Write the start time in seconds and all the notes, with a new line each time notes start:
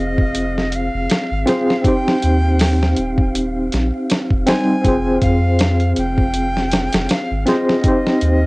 Already playing: F1 C4 F4 G#4 C5 D#5 F5
0.18 kick
0.35 closed hi-hat
0.58 snare
0.72 F5, closed hi-hat
0.94 F1
1.10 snare, closed hi-hat
1.31 G#1
1.46 C4 F4 G#4 C5, snare, closed hi-hat
1.70 snare
1.82 C4 D#4, kick, closed hi-hat
1.86 G4 C5 G5
2.08 snare
2.22 D#2, closed hi-hat
2.59 snare, open hi-hat
2.83 snare
2.97 D#1, closed hi-hat
3.18 kick
3.35 closed hi-hat
3.72 A#1, snare, closed hi-hat
4.10 snare, closed hi-hat
4.31 D#1, kick
4.47 G3 C4 D#4 C5 G#5, snare, closed hi-hat
4.82 F1 C4 F4 G#4, kick, closed hi-hat
4.88 C5
5.22 F2 F5, kick, closed hi-hat
5.59 snare, closed hi-hat
5.80 closed hi-hat
5.96 F1 G5, closed hi-hat
6.18 kick
6.34 closed hi-hat
6.57 snare
6.72 snare, closed hi-hat
6.93 F1, snare, closed hi-hat
7.09 F5, snare, closed hi-hat
7.31 G#1
7.46 C4 F4 G#4 C5 D#5, snare, closed hi-hat
7.69 snare
7.82 C4 D#4, kick, closed hi-hat
7.86 G4 C5
8.07 snare
8.21 D#2, closed hi-hat